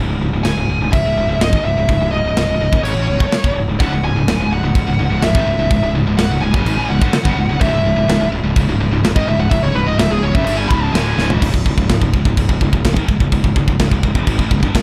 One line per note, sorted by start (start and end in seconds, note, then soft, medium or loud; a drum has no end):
0.09 0.20 C#1 medium
0.09 0.21 C#2 medium
0.09 0.22 G#2 medium
0.20 0.32 C#1 medium
0.20 0.32 C#2 medium
0.20 0.33 G#2 medium
0.32 0.43 C#1 medium
0.32 0.44 C#2 medium
0.32 0.45 G#2 medium
0.44 0.56 C#1 medium
0.44 0.56 C#2 medium
0.44 0.57 G#2 medium
0.44 0.89 G#5 loud
0.44 snare loud
0.44 crash medium
0.56 0.68 C#1 medium
0.56 0.68 C#2 medium
0.56 0.69 G#2 medium
0.69 0.80 C#1 medium
0.69 0.80 C#2 medium
0.69 0.80 G#2 medium
0.80 0.92 C#1 medium
0.80 0.92 C#2 medium
0.80 0.93 G#2 medium
0.92 1.04 C#1 medium
0.92 1.04 C#2 medium
0.92 1.04 G#2 medium
0.92 1.37 E5 medium
0.92 kick medium
0.92 crash medium
1.04 1.16 C#1 medium
1.04 1.16 C#2 medium
1.04 1.16 G#2 medium
1.16 1.28 C#1 medium
1.16 1.27 C#2 medium
1.16 1.28 G#2 medium
1.28 1.39 C#1 medium
1.28 1.39 C#2 medium
1.28 1.40 G#2 medium
1.40 1.52 C#1 medium
1.40 1.52 C#2 medium
1.40 1.51 G#2 medium
1.40 1.64 D#5 medium
1.40 snare loud
1.40 crash medium
1.52 1.63 G#1 medium
1.52 1.64 G#2 medium
1.52 1.64 D#3 loud
1.52 kick loud
1.63 1.75 C#1 medium
1.63 1.76 C#2 medium
1.63 1.76 G#2 medium
1.63 2.09 E5 loud
1.75 1.87 C#1 medium
1.75 1.87 C#2 medium
1.75 1.88 G#2 medium
1.88 2.00 C#1 medium
1.88 1.99 C#2 medium
1.88 1.99 G#2 medium
1.88 kick medium
1.88 crash medium
2.00 2.11 C#1 medium
2.00 2.12 C#2 medium
2.00 2.12 G#2 medium
2.12 2.23 C#1 medium
2.12 2.23 C#2 medium
2.12 2.24 G#2 medium
2.12 2.80 D#5 medium
2.24 2.35 C#1 medium
2.24 2.35 C#2 medium
2.24 2.36 G#2 medium
2.36 2.47 C#1 medium
2.36 2.47 C#2 medium
2.36 2.48 G#2 medium
2.36 snare loud
2.36 crash medium
2.48 2.59 C#1 medium
2.48 2.60 C#2 medium
2.48 2.60 G#2 medium
2.59 2.71 C#1 medium
2.59 2.73 C#2 medium
2.59 2.73 G#2 medium
2.73 2.83 F#1 medium
2.73 2.84 F#2 medium
2.73 2.84 C#3 loud
2.73 kick loud
2.83 2.95 G#1 medium
2.83 2.96 G#2 loud
2.83 2.96 D#3 medium
2.83 3.51 C#5 medium
2.83 crash medium
2.95 3.07 A1 medium
2.95 3.08 A2 medium
2.95 3.08 E3 loud
3.07 3.19 C#1 medium
3.07 3.20 C#2 medium
3.07 3.21 G#2 medium
3.20 3.31 G1 medium
3.20 3.32 G2 loud
3.20 3.32 D3 loud
3.20 kick loud
3.31 muted fingered electric bass stroke soft
3.31 muted distorted electric guitar stroke medium
3.31 snare loud
3.31 crash medium
3.44 3.54 F#1 medium
3.44 3.56 F#2 medium
3.44 3.56 C#3 loud
3.44 kick loud
3.55 3.66 C#1 medium
3.55 3.68 C#2 medium
3.55 3.68 G#2 medium
3.67 3.78 C#1 medium
3.67 3.78 C#2 medium
3.67 3.79 G#2 medium
3.79 3.90 C#1 loud
3.79 3.91 C#2 loud
3.79 3.91 G#2 loud
3.79 4.03 F#5 loud
3.79 kick loud
3.79 crash medium
3.91 4.02 C#1 medium
3.91 4.03 C#2 medium
3.91 4.03 G#2 medium
4.02 4.14 C#1 medium
4.02 4.15 C#2 medium
4.02 4.15 G#2 medium
4.02 4.48 G#5 loud
4.15 4.26 C#1 medium
4.15 4.27 C#2 medium
4.15 4.27 G#2 medium
4.26 4.38 C#1 medium
4.26 4.39 C#2 medium
4.26 4.39 G#2 medium
4.26 snare loud
4.26 crash medium
4.39 4.49 C#1 medium
4.39 4.50 C#2 medium
4.39 4.50 G#2 medium
4.50 4.62 C#1 medium
4.50 4.63 C#2 medium
4.50 4.63 G#2 medium
4.50 5.20 F#5 medium
4.62 4.74 C#1 medium
4.62 4.74 C#2 medium
4.62 4.74 G#2 medium
4.75 4.85 C#1 medium
4.75 4.86 C#2 medium
4.75 4.86 G#2 medium
4.75 kick loud
4.75 crash medium
4.86 4.98 C#1 medium
4.86 4.99 C#2 medium
4.86 4.99 G#2 medium
4.99 5.10 C#1 medium
4.99 5.11 C#2 medium
4.99 5.12 G#2 medium
5.10 5.21 C#1 medium
5.10 5.22 C#2 medium
5.10 5.23 G#2 medium
5.22 5.33 C#1 medium
5.22 5.35 C#2 medium
5.22 5.34 G#2 medium
5.22 5.91 E5 medium
5.22 snare loud
5.22 crash medium
5.35 5.46 G#1 medium
5.35 5.46 G#2 loud
5.35 5.47 D#3 loud
5.35 kick loud
5.46 5.58 C#1 medium
5.46 5.58 C#2 medium
5.46 5.59 G#2 medium
5.58 5.69 C#1 medium
5.58 5.69 C#2 medium
5.58 5.70 G#2 medium
5.71 5.81 C#1 medium
5.71 5.81 C#2 medium
5.71 5.81 G#2 medium
5.71 kick medium
5.71 crash medium
5.82 5.93 C#1 medium
5.82 5.94 C#2 medium
5.82 5.94 G#2 medium
5.94 6.05 C#1 medium
5.94 6.05 C#2 medium
5.94 6.06 G#2 medium
6.06 6.17 C#1 medium
6.06 6.17 C#2 medium
6.06 6.18 G#2 medium
6.18 6.29 C#1 medium
6.18 6.28 C#2 medium
6.18 6.29 G#2 medium
6.18 6.41 F#5 loud
6.18 snare loud
6.18 crash medium
6.30 6.41 C#1 medium
6.30 6.40 C#2 medium
6.30 6.41 G#2 medium
6.41 6.53 C#1 medium
6.41 6.52 C#2 medium
6.41 6.53 G#2 medium
6.41 6.86 G#5 loud
6.53 6.65 F#1 medium
6.53 6.64 F#2 loud
6.53 6.65 C#3 loud
6.53 kick loud
6.65 6.77 G#1 loud
6.65 6.76 G#2 medium
6.65 6.77 D#3 loud
6.65 crash medium
6.77 6.89 A1 medium
6.77 6.88 A2 medium
6.77 6.89 E3 loud
6.89 7.01 C#1 medium
6.89 7.00 C#2 medium
6.89 7.01 G#2 medium
6.89 7.57 F#5 loud
7.01 7.13 G1 medium
7.01 7.12 G2 medium
7.01 7.12 D3 medium
7.01 kick loud
7.12 muted distorted electric guitar stroke medium
7.12 muted fingered electric bass stroke soft
7.12 snare loud
7.12 crash medium
7.23 7.36 F#1 loud
7.23 7.36 F#2 medium
7.23 7.36 C#3 loud
7.23 kick loud
7.37 7.48 C#1 medium
7.37 7.48 C#2 medium
7.37 7.48 G#2 medium
7.49 7.60 C#1 medium
7.49 7.60 C#2 medium
7.49 7.60 G#2 medium
7.61 7.72 C#1 loud
7.61 7.71 C#2 medium
7.61 7.72 G#2 loud
7.61 8.28 E5 medium
7.61 kick loud
7.61 crash medium
7.72 7.84 C#1 medium
7.72 7.82 C#2 medium
7.72 7.83 G#2 medium
7.83 7.96 C#1 medium
7.83 7.95 C#2 medium
7.83 7.95 G#2 medium
7.96 8.08 C#1 medium
7.96 8.07 C#2 medium
7.96 8.07 G#2 medium
8.08 8.20 C#1 medium
8.08 8.20 C#2 medium
8.08 8.20 G#2 medium
8.08 snare loud
8.08 crash medium
8.20 8.31 C#1 medium
8.20 8.31 C#2 medium
8.20 8.31 G#2 medium
8.32 8.43 C#1 medium
8.32 8.43 C#2 medium
8.32 8.43 G#2 medium
8.44 8.55 C#1 medium
8.44 8.55 C#2 medium
8.44 8.55 G#2 medium
8.56 8.67 C#1 medium
8.56 8.67 C#2 medium
8.56 8.67 G#2 medium
8.56 kick loud
8.56 crash medium
8.68 8.79 C#1 medium
8.68 8.79 C#2 medium
8.68 8.80 G#2 medium
8.80 8.91 C#1 medium
8.80 8.91 C#2 medium
8.80 8.91 G#2 medium
8.92 9.03 C#1 medium
8.92 9.04 C#2 medium
8.92 9.04 G#2 medium
9.04 9.15 C#1 medium
9.04 9.16 C#2 medium
9.04 9.15 G#2 medium
9.04 snare loud
9.04 crash medium
9.16 9.27 G#1 loud
9.16 9.27 G#2 loud
9.16 9.28 D#3 loud
9.16 9.27 D#5 medium
9.16 kick loud
9.27 9.38 C#1 medium
9.27 9.38 C#2 medium
9.27 9.39 G#2 medium
9.27 9.40 E5 loud
9.39 9.50 C#1 medium
9.39 9.51 C#2 medium
9.39 9.51 G#2 medium
9.39 9.50 F#5 loud
9.50 9.62 C#1 medium
9.50 9.62 C#2 medium
9.50 9.63 G#2 medium
9.50 9.63 E5 loud
9.50 kick medium
9.50 crash medium
9.63 9.74 C#1 medium
9.63 9.74 C#2 medium
9.63 9.75 G#2 medium
9.63 9.75 C#5 medium
9.74 9.86 C#1 medium
9.74 9.86 C#2 medium
9.74 9.87 G#2 medium
9.74 9.87 B4 loud
9.87 9.97 C#1 medium
9.87 9.99 C#2 medium
9.87 9.99 G#2 medium
9.87 9.98 D#5 loud
9.98 10.10 C#1 medium
9.98 10.10 C#2 medium
9.98 10.10 G#2 medium
9.98 10.10 E5 loud
9.98 snare loud
9.98 crash medium
10.10 10.21 C#1 medium
10.10 10.23 C#2 medium
10.10 10.23 G#2 medium
10.10 10.22 G#4 medium
10.22 10.33 C#1 medium
10.22 10.35 C#2 medium
10.22 10.35 G#2 medium
10.22 10.34 C#5 loud
10.35 10.46 F#1 loud
10.35 10.46 F#2 loud
10.35 10.47 C#3 loud
10.35 10.44 E5 loud
10.35 kick loud
10.45 10.69 G1 loud
10.45 10.70 G2 loud
10.45 10.70 D3 loud
10.45 10.70 G3 loud
10.45 10.57 E5 medium
10.45 crash medium
10.57 10.68 G#5 loud
10.69 10.92 C#1 loud
10.69 10.94 C#2 loud
10.69 10.94 G#2 loud
10.69 10.94 C#3 loud
10.69 10.82 B5 loud
10.69 kick loud
10.82 10.93 A5 loud
10.93 11.16 D1 loud
10.93 11.17 D2 loud
10.93 11.17 A2 loud
10.93 11.18 D3 loud
10.93 11.27 G#5 loud
10.93 snare loud
10.93 crash medium
11.17 11.40 C#1 loud
11.17 11.41 C#2 loud
11.17 11.41 G#2 loud
11.17 11.42 C#3 loud
11.17 snare medium
11.30 floor tom medium
11.42 11.53 C#1 loud
11.42 11.53 C#2 medium
11.42 11.53 G#2 loud
11.42 kick medium
11.42 crash loud
11.42 crash medium
11.54 11.65 C#1 medium
11.54 11.65 C#2 medium
11.54 11.65 G#2 medium
11.54 kick medium
11.66 11.77 C#1 medium
11.66 11.76 C#2 medium
11.66 11.77 G#2 medium
11.66 kick medium
11.78 11.88 C#1 medium
11.78 11.88 C#2 medium
11.78 11.88 G#2 medium
11.78 kick medium
11.89 12.01 C#1 medium
11.89 12.00 C#2 medium
11.89 12.00 G#2 medium
11.89 kick medium
11.89 snare loud
11.89 crash medium
12.01 12.12 C#1 medium
12.01 12.13 C#2 medium
12.01 12.13 G#2 medium
12.01 kick medium
12.14 12.24 C#1 medium
12.14 12.25 C#2 medium
12.14 12.26 G#2 medium
12.14 kick medium
12.25 12.36 C#1 medium
12.25 12.36 C#2 medium
12.25 12.37 G#2 medium
12.25 kick medium
12.37 12.48 C#1 medium
12.37 12.49 C#2 medium
12.37 12.49 G#2 medium
12.37 kick medium
12.37 crash medium
12.49 12.60 C#1 medium
12.49 12.60 C#2 medium
12.49 12.60 G#2 medium
12.49 kick medium
12.61 12.72 C#1 medium
12.61 12.71 C#2 medium
12.61 12.72 G#2 medium
12.61 kick medium
12.73 12.84 C#1 medium
12.73 12.83 C#2 medium
12.73 12.84 G#2 medium
12.73 kick medium
12.85 12.95 C#1 medium
12.85 12.96 C#2 medium
12.85 12.95 G#2 medium
12.85 kick loud
12.85 snare loud
12.85 crash medium
12.96 13.07 G#1 loud
12.96 13.07 G#2 medium
12.96 13.08 D#3 loud
12.96 kick medium
13.08 13.19 C#1 medium
13.08 13.20 C#2 medium
13.08 13.20 G#2 medium
13.08 kick medium
13.20 13.31 C#1 medium
13.20 13.31 C#2 medium
13.20 13.32 G#2 medium
13.20 kick medium
13.32 13.43 C#1 medium
13.32 13.44 C#2 medium
13.32 13.43 G#2 medium
13.32 kick medium
13.32 crash medium
13.44 13.55 C#1 medium
13.44 13.55 C#2 medium
13.44 13.56 G#2 medium
13.44 kick medium
13.56 13.67 C#1 medium
13.56 13.67 C#2 medium
13.56 13.68 G#2 medium
13.56 kick medium
13.68 13.79 C#1 medium
13.68 13.80 C#2 medium
13.68 13.80 G#2 medium
13.68 kick medium
13.80 13.90 C#1 medium
13.80 13.91 C#2 medium
13.80 13.92 G#2 medium
13.80 kick medium
13.80 snare loud
13.80 crash medium
13.91 14.02 C#1 medium
13.91 14.03 C#2 medium
13.91 14.04 G#2 medium
13.91 kick medium
14.03 14.14 C#1 medium
14.03 14.15 C#2 medium
14.03 14.16 G#2 medium
14.03 kick medium
14.15 14.26 F#1 loud
14.15 14.26 F#2 loud
14.15 14.27 C#3 loud
14.15 kick medium
14.27 14.38 G#1 loud
14.27 14.38 G#2 loud
14.27 14.39 D#3 loud
14.27 kick medium
14.27 crash medium
14.39 14.50 A1 loud
14.39 14.50 A2 loud
14.39 14.50 E3 loud
14.39 kick medium
14.51 14.62 C#1 medium
14.51 14.62 C#2 medium
14.51 14.63 G#2 medium
14.51 kick medium
14.63 14.74 G1 loud
14.63 14.74 G2 loud
14.63 14.74 D3 loud
14.63 kick medium
14.75 muted fingered electric bass stroke soft
14.75 muted distorted electric guitar stroke medium
14.75 kick loud
14.75 snare loud
14.75 crash medium